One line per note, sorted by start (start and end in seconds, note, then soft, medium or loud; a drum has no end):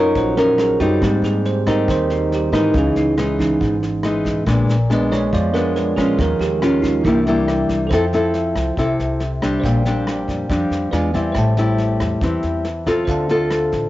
0.00 0.12 F#2 medium
0.00 0.14 F#3 medium
0.00 0.98 F#3 soft
0.00 0.34 C#4 medium
0.00 0.99 C#4 soft
0.00 0.35 D#4 medium
0.00 1.04 F4 medium
0.00 1.04 A4 soft
0.00 0.35 A#4 medium
0.00 0.37 A#4 medium
0.00 1.04 C#5 medium
0.15 0.76 A#1 loud
0.15 0.80 F#3 medium
0.15 0.38 C5 medium
0.15 kick medium
0.15 snare soft
0.37 0.77 C#4 medium
0.37 0.77 D#4 medium
0.37 0.58 A#4 medium
0.37 0.78 A#4 medium
0.37 snare soft
0.58 0.81 G#4 medium
0.58 cross-stick medium
0.58 snare soft
0.80 1.00 F#2 medium
0.80 1.63 G3 medium
0.80 1.64 C4 medium
0.80 1.64 D#4 medium
0.80 1.01 F#4 medium
0.80 kick soft
0.80 snare soft
1.01 1.22 G#2 loud
1.01 1.86 G#2 medium
1.01 1.63 G3 soft
1.01 1.64 A#3 soft
1.01 1.64 C4 soft
1.01 1.24 G4 medium
1.01 kick medium
1.01 cross-stick medium
1.01 snare soft
1.22 1.84 G#2 medium
1.22 1.45 G#4 medium
1.22 snare soft
1.45 1.67 C5 medium
1.45 snare soft
1.66 2.50 G3 medium
1.66 2.49 C4 medium
1.66 2.50 D#4 medium
1.66 1.89 A#4 medium
1.66 kick soft
1.66 cross-stick medium
1.66 snare soft
1.88 2.49 D#2 loud
1.88 2.72 D#3 medium
1.88 2.11 C5 medium
1.88 kick medium
1.88 snare soft
2.10 2.32 D#4 medium
2.10 snare soft
2.32 2.54 G4 medium
2.32 snare soft
2.52 2.73 G#2 medium
2.52 3.14 E3 medium
2.52 3.14 G#3 medium
2.52 3.14 D#4 medium
2.52 2.74 A#4 medium
2.52 kick soft
2.52 cross-stick medium
2.52 snare soft
2.74 2.94 C#2 loud
2.74 3.59 C#3 medium
2.74 2.97 G#4 medium
2.74 kick medium
2.74 snare soft
2.95 3.56 C#2 medium
2.95 3.10 D#4 medium
2.95 snare soft
3.17 3.75 E3 medium
3.17 3.76 G#3 medium
3.17 3.76 D#4 medium
3.17 cross-stick medium
3.17 snare soft
3.39 4.00 E3 soft
3.39 4.01 C#4 soft
3.39 4.01 D#4 soft
3.39 kick soft
3.39 snare soft
3.60 4.21 G#1 medium
3.60 4.45 G#2 medium
3.60 kick medium
3.60 snare soft
3.83 snare soft
4.03 4.44 E3 medium
4.03 4.44 G#3 medium
4.03 4.44 D#4 medium
4.03 cross-stick medium
4.03 snare soft
4.24 4.45 B1 medium
4.24 kick soft
4.24 snare soft
4.46 4.67 A#1 loud
4.46 5.31 A#2 medium
4.46 4.75 G#3 medium
4.46 4.75 B3 medium
4.46 4.75 D4 medium
4.46 kick medium
4.46 cross-stick medium
4.46 snare soft
4.67 5.28 A#1 medium
4.67 snare soft
4.90 5.51 G#3 medium
4.90 5.51 B3 medium
4.90 5.52 D4 medium
4.90 5.12 D#5 medium
4.90 snare soft
5.11 5.73 G#3 soft
5.11 5.73 B3 soft
5.11 5.73 D4 soft
5.11 5.33 C#5 medium
5.11 kick soft
5.11 cross-stick medium
5.11 snare soft
5.33 5.94 F2 medium
5.33 6.17 F3 medium
5.33 5.55 D5 medium
5.33 kick medium
5.33 snare soft
5.54 5.94 G#3 medium
5.54 5.94 B3 medium
5.54 5.94 D4 medium
5.54 5.75 A#4 medium
5.54 snare soft
5.76 5.97 B4 medium
5.76 snare soft
5.96 6.17 A#1 medium
5.96 6.59 G#3 medium
5.96 6.59 C#4 medium
5.96 6.59 F4 medium
5.96 6.18 G#4 medium
5.96 kick soft
5.96 cross-stick medium
5.96 snare soft
6.18 6.39 D#2 loud
6.18 7.03 D#3 medium
6.18 6.47 F3 soft
6.18 6.48 G#3 soft
6.18 6.48 C#4 medium
6.18 6.41 A#4 medium
6.18 kick medium
6.18 snare soft
6.39 7.01 D#2 medium
6.39 6.62 G4 medium
6.39 snare soft
6.62 7.04 G#3 medium
6.62 7.04 C#4 medium
6.62 7.04 F4 medium
6.62 6.83 F4 medium
6.62 cross-stick medium
6.62 snare soft
6.82 7.00 D#4 medium
6.82 kick soft
6.82 snare soft
7.01 7.65 C2 medium
7.01 7.65 E3 soft
7.01 7.66 A#3 soft
7.01 7.66 D4 medium
7.01 7.04 D#4 soft
7.01 kick medium
7.01 snare soft
7.06 7.90 C3 medium
7.06 7.24 G3 medium
7.06 7.24 A#3 medium
7.06 7.18 E4 medium
7.06 7.24 E4 medium
7.27 7.88 G3 medium
7.27 7.89 A#3 medium
7.27 7.89 E4 medium
7.27 snare soft
7.48 cross-stick medium
7.48 snare soft
7.69 7.90 C2 medium
7.69 kick soft
7.69 snare soft
7.87 8.52 F2 medium
7.87 9.58 A4 medium
7.87 9.58 C5 medium
7.87 9.60 E5 medium
7.87 kick medium
7.87 cross-stick medium
7.87 snare soft
7.93 8.76 F3 medium
7.93 8.05 C4 medium
7.93 8.05 E4 medium
7.93 8.05 A4 medium
7.93 9.61 G5 medium
8.13 8.74 C4 medium
8.13 8.75 E4 medium
8.13 8.75 A4 medium
8.13 snare soft
8.34 snare soft
8.55 8.76 C2 medium
8.55 kick soft
8.55 cross-stick medium
8.55 snare soft
8.77 8.97 C2 medium
8.77 9.62 C3 medium
8.77 9.21 C4 medium
8.77 9.21 E4 medium
8.77 9.21 A4 medium
8.77 kick medium
8.77 snare soft
8.99 9.60 C2 medium
8.99 snare soft
9.20 snare soft
9.42 9.82 G3 medium
9.42 9.82 C4 medium
9.42 9.82 D4 medium
9.42 kick soft
9.42 cross-stick medium
9.42 snare soft
9.60 10.24 A#1 loud
9.60 10.88 C5 medium
9.60 10.89 D5 medium
9.60 kick medium
9.64 10.48 A#2 medium
9.64 10.91 F5 medium
9.64 10.91 G5 medium
9.64 snare soft
9.85 10.47 G3 medium
9.85 10.47 C4 medium
9.85 10.47 D4 medium
9.85 snare soft
10.07 cross-stick medium
10.07 snare soft
10.28 10.48 F2 medium
10.28 kick soft
10.28 snare soft
10.49 10.70 F2 medium
10.49 10.91 F3 medium
10.49 10.91 G3 medium
10.49 10.92 C4 soft
10.49 10.91 D4 medium
10.49 kick medium
10.49 snare soft
10.70 10.91 F2 medium
10.70 snare soft
10.91 11.33 E2 loud
10.91 11.11 G#3 soft
10.91 11.11 D4 soft
10.91 11.11 F4 medium
10.91 11.35 B4 medium
10.91 11.35 D5 medium
10.91 11.36 F5 medium
10.91 11.37 G#5 medium
10.91 cross-stick medium
10.91 snare soft
11.14 11.54 G3 medium
11.14 11.54 C4 medium
11.14 11.54 E4 medium
11.14 kick soft
11.14 snare soft
11.32 11.96 A1 medium
11.32 13.03 C5 medium
11.32 13.04 E5 medium
11.32 kick soft
11.32 cross-stick medium
11.32 snare soft
11.36 12.20 A2 medium
11.36 13.05 G5 medium
11.36 13.06 A5 medium
11.57 12.19 G3 medium
11.57 12.19 C4 medium
11.57 12.19 E4 medium
11.57 snare soft
11.78 snare soft
12.00 12.21 E2 medium
12.00 kick soft
12.00 cross-stick medium
12.00 snare soft
12.21 12.42 E2 medium
12.21 13.07 E3 medium
12.21 12.65 G3 medium
12.21 12.66 C4 medium
12.21 12.66 E4 medium
12.21 kick medium
12.21 snare soft
12.43 13.04 E2 medium
12.43 snare soft
12.65 snare soft
12.86 13.27 C4 medium
12.86 13.27 F4 medium
12.86 13.27 A4 medium
12.86 kick soft
12.86 cross-stick medium
12.86 snare soft
13.05 13.69 D2 medium
13.05 13.89 D3 medium
13.05 13.89 C5 medium
13.05 13.89 E5 medium
13.05 kick medium
13.05 snare soft
13.10 13.89 F5 medium
13.10 13.89 A5 medium
13.29 13.89 C4 medium
13.29 13.89 F4 medium
13.29 13.89 A4 medium
13.29 snare soft
13.51 cross-stick medium
13.51 snare soft
13.72 13.89 A1 medium
13.72 kick soft
13.72 snare soft